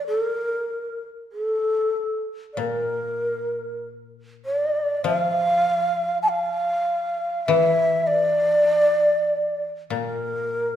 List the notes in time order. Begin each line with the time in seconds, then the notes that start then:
Already playing: E3
0.08 A4
0.22 A#4
1.32 A4
2.53 A#2 D5
2.59 A#4
4.45 D5
5.04 F3 F5
6.23 A5
6.29 F5
7.47 E3 E5
8.07 D5
9.90 A#2 A#4